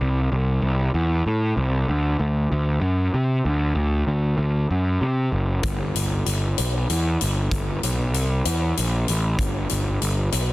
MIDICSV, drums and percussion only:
0, 0, Header, 1, 2, 480
1, 0, Start_track
1, 0, Key_signature, 1, "major"
1, 0, Tempo, 625000
1, 1, Time_signature, 6, 3, 24, 8
1, 8086, End_track
2, 0, Start_track
2, 0, Title_t, "Drums"
2, 4325, Note_on_c, 9, 42, 73
2, 4328, Note_on_c, 9, 36, 93
2, 4401, Note_off_c, 9, 42, 0
2, 4405, Note_off_c, 9, 36, 0
2, 4574, Note_on_c, 9, 42, 58
2, 4651, Note_off_c, 9, 42, 0
2, 4809, Note_on_c, 9, 42, 57
2, 4886, Note_off_c, 9, 42, 0
2, 5052, Note_on_c, 9, 42, 75
2, 5128, Note_off_c, 9, 42, 0
2, 5297, Note_on_c, 9, 42, 55
2, 5373, Note_off_c, 9, 42, 0
2, 5536, Note_on_c, 9, 42, 57
2, 5613, Note_off_c, 9, 42, 0
2, 5771, Note_on_c, 9, 36, 93
2, 5772, Note_on_c, 9, 42, 77
2, 5848, Note_off_c, 9, 36, 0
2, 5849, Note_off_c, 9, 42, 0
2, 6015, Note_on_c, 9, 42, 60
2, 6091, Note_off_c, 9, 42, 0
2, 6254, Note_on_c, 9, 42, 61
2, 6330, Note_off_c, 9, 42, 0
2, 6492, Note_on_c, 9, 42, 82
2, 6569, Note_off_c, 9, 42, 0
2, 6738, Note_on_c, 9, 42, 59
2, 6815, Note_off_c, 9, 42, 0
2, 6973, Note_on_c, 9, 42, 56
2, 7050, Note_off_c, 9, 42, 0
2, 7210, Note_on_c, 9, 36, 97
2, 7213, Note_on_c, 9, 42, 73
2, 7286, Note_off_c, 9, 36, 0
2, 7290, Note_off_c, 9, 42, 0
2, 7446, Note_on_c, 9, 42, 54
2, 7522, Note_off_c, 9, 42, 0
2, 7693, Note_on_c, 9, 42, 59
2, 7770, Note_off_c, 9, 42, 0
2, 7929, Note_on_c, 9, 42, 70
2, 8005, Note_off_c, 9, 42, 0
2, 8086, End_track
0, 0, End_of_file